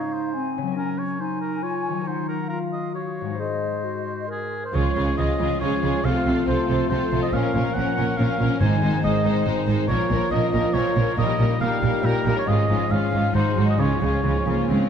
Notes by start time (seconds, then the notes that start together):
Already playing: C#3 G#3 D#4 F4 G#4 C#5 F5
0.12 C5
0.33 C4 G#5
0.58 C#3
0.62 F#3
0.67 C#4
0.72 A#4
0.76 C#4 A#4
0.98 C#5
1.20 D#4 C5 G#5
1.41 A#4
1.62 F4 C#5
1.88 D#3
1.92 F#3
1.97 D#4
2.01 A#4 F#5
2.06 D#4 C5
2.28 A#4
2.48 F4 A#4 F5
2.73 D#5
2.94 F#4 C#5
3.21 G#2
3.25 G#3
3.30 D#4
3.34 C5
3.39 G#4 C5 D#5
3.85 F#4
4.28 G#4 A#4
4.62 C5
4.73 C#2 C#3 F3 G#3 C#4 F4 G#4 C#5
4.95 C#2 C#3 G#3 C#4 F4 G#4
5.16 C#2 C#3 G#3 F4 G#4 D#5
5.39 C#2 C#3 G#3 F4 G#4
5.58 C#2 C#3 F3 G#3 C#4 F4 G#4 C#5 G#5
5.82 C#2 C#3 G#3 F4 G#4
6.02 C2 C3 F3 A3 C4 F4 A4 F5
6.25 C2 C3 C4 F4 A4
6.46 C2 C3 F3 A3 C4 F4 A4 C5
6.68 C2 C3 C4 F4 A4
6.89 C2 C3 F3 A3 C4 F4 A4 C5 A5
7.11 C2 C3 C4 F4 A4 C5
7.21 D#5
7.31 A#1 A#2 F3 A#3 C#4 A#4 F5
7.54 A#1 A#2 F3 C#4 A#4
7.74 A#1 A#2 C#4 A#4 F#5
7.96 A#1 A#2 C#4 A#4
8.17 A#1 A#2 F3 A#3 C#4 A#4 C#5 F5
8.21 C#4
8.38 A#1 A#2 C#4 A#4
8.59 G#1 G#2 D#3 G#3 C4 D#4 C5 G#5
8.82 G#1 G#2 D#3 G#3 D#4 C5
9.02 G#1 G#2 D#3 G#3 C4 D#4 C5 D#5
9.23 G#1 G#2 G#3 D#4 C5
9.45 G#1 G#2 G#3 D#4 C5 D#5
9.66 G#1 G#2 G#3 D#4 G#4 C5
9.88 A#1 A#2 F3 A#3 F4 A#4 C#5
10.10 A#1 A#2 F3 A#3 A#4
10.30 A#1 A#2 F3 A#3 C#4 A#4 D#5
10.52 A#1 A#2 F3 A#3 A#4
10.73 A#1 A#2 F3 A#3 A#4 C#5
10.95 A#1 A#2 F3 A#3 F4 A#4
11.15 A#1 A#2 G3 A#3 D#4 A#4 D#5
11.19 G3
11.39 A#1 A#2 G3 A#3 A#4
11.59 A#1 A#2 G3 A#3 G4 A#4 F5
11.82 A#1 A#2 G3 A#3 A#4
12.02 A#1 A#2 G3 A#3 A#4 G5
12.25 A#1 A#2 G3 A#3 G4 A#4
12.35 C#5
12.45 G#1 G#2 G#3 C#4 F4 G#4 D#5
12.69 G#1 G#2 F3 G#3 C#4 F4
12.88 G#1 G#2 G#3 C#4 F4 F5
13.12 G#1 G#2 G#3 C#4 F4 G#4
13.33 G#1 G#2 F#3 G#3 D#4 F#4 C5
13.55 G#1 G#2 G#3 D#4 F#4
13.66 D#5
13.77 C#2 C#3 F3 G#3 C#4 F4 C#5
14.01 C#2 C#3 G#3 C#4 F4
14.23 C#2 C#3 G#3 C#4 F4
14.46 C#2 C#3 A#3 C#4 F4 C#5
14.69 C#2 C#3 G#3 C4 C#4 F4 F5